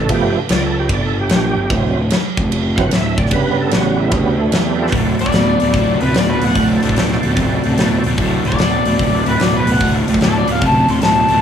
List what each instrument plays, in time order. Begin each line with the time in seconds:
0.00 tonewheel organ A4
0.09 picked electric bass G1, tonewheel organ F3 A3 B3 G4, kick, crash
0.49 picked electric bass C#2, tonewheel organ D5, snare, crash
0.66 tonewheel organ A4
0.79 tonewheel organ G4
0.89 picked electric bass G1, tonewheel organ D5, kick, crash
1.06 tonewheel organ A4
1.20 tonewheel organ G4
1.29 picked electric bass A#1, snare, crash
1.34 tonewheel organ G4
1.56 picked electric bass G1
1.70 picked electric bass D1, tonewheel organ E3 F#3 C4, kick, crash
1.97 picked electric bass D1
2.10 snare, crash
2.37 picked electric bass F1, kick
2.52 crash
2.76 picked electric bass G1, tonewheel organ E3 F#3 C4 F5 F#5, kick
2.91 picked electric bass D1, tonewheel organ E5, snare, crash
3.18 picked electric bass D1, tonewheel organ D5, kick
3.26 snare
3.31 picked electric bass G2, tonewheel organ C#3 G3 B3 B4, kick, crash
3.61 tonewheel organ A4
3.71 picked electric bass A1, tonewheel organ F#4, snare, crash
4.00 tonewheel organ E4
4.11 picked electric bass D2, tonewheel organ C#3 G3 B3, kick, crash
4.38 tonewheel organ A3
4.49 picked electric bass E2, tonewheel organ G#3 A3, crash
4.54 snare
4.60 tonewheel organ G3 A3
4.65 tonewheel organ B3 C4
4.71 tonewheel organ D4 E4
4.77 tonewheel organ F4 G4
4.82 tonewheel organ A4 B4
4.87 tonewheel organ F#4 A4 C5, snare
4.91 picked electric bass D1, overdriven electric guitar D2 A2, tonewheel organ C5 D5, kick, open hi-hat
5.19 picked electric bass D1, overdriven electric guitar D2 A2, electric slide guitar D5, open hi-hat
5.26 kick
5.32 picked electric bass D1, overdriven electric guitar D2 B2, snare, open hi-hat
5.60 picked electric bass D1, overdriven electric guitar D2 B2, open hi-hat
5.74 picked electric bass D1, overdriven electric guitar D2 C3, kick, open hi-hat
6.01 picked electric bass D1, overdriven electric guitar D2 C3, electric slide guitar B4, open hi-hat
6.14 picked electric bass D1, overdriven electric guitar D2 B2, electric slide guitar D5, snare, open hi-hat
6.30 electric slide guitar B4
6.42 picked electric bass D1, overdriven electric guitar D2 B2, electric slide guitar F#5, open hi-hat
6.55 picked electric bass D1, overdriven electric guitar D2 A2, kick, open hi-hat
6.83 picked electric bass D1, overdriven electric guitar D2 A2, open hi-hat
6.89 kick
6.96 picked electric bass D1, overdriven electric guitar D2 B2, snare, open hi-hat
7.12 snare
7.23 picked electric bass D1, overdriven electric guitar D2 B2, open hi-hat
7.37 picked electric bass D1, overdriven electric guitar D2 C3, kick, open hi-hat
7.64 picked electric bass D1, overdriven electric guitar D2 C3, open hi-hat
7.78 picked electric bass D1, overdriven electric guitar D2 B2, snare, open hi-hat
8.04 picked electric bass D1, overdriven electric guitar D2 B2, open hi-hat
8.17 picked electric bass D1, overdriven electric guitar D2 A2, tonewheel organ F#4 A4 C5 D5, kick, open hi-hat
8.45 picked electric bass D1, overdriven electric guitar D2 A2, electric slide guitar D5, open hi-hat
8.52 kick
8.59 picked electric bass D1, overdriven electric guitar D2 B2, snare, open hi-hat
8.85 picked electric bass D1, overdriven electric guitar D2 B2, open hi-hat
8.99 picked electric bass D1, overdriven electric guitar D2 C3, kick, open hi-hat
9.26 picked electric bass D1, overdriven electric guitar D2 C3, electric slide guitar B4, open hi-hat
9.39 picked electric bass D1, overdriven electric guitar D2 B2, electric slide guitar D5, snare, open hi-hat
9.57 electric slide guitar B4
9.66 picked electric bass D1, overdriven electric guitar D2 B2, open hi-hat
9.72 electric slide guitar F#5
9.80 picked electric bass D1, overdriven electric guitar D2 A2, kick, open hi-hat
10.07 picked electric bass D1, overdriven electric guitar D2 A2, open hi-hat
10.14 kick
10.21 picked electric bass D1, overdriven electric guitar D2 B2, electric slide guitar A4, snare, open hi-hat
10.38 electric slide guitar D5
10.47 picked electric bass D1, overdriven electric guitar D2 B2, open hi-hat
10.52 electric slide guitar F5
10.61 picked electric bass D1, overdriven electric guitar D2 C3, kick, open hi-hat
10.66 electric slide guitar A5
10.88 picked electric bass D1, overdriven electric guitar D2 C3, electric slide guitar C6, open hi-hat
11.02 picked electric bass D1, overdriven electric guitar D2 B2, electric slide guitar A5, snare, open hi-hat
11.29 picked electric bass D1, overdriven electric guitar D2 B2, open hi-hat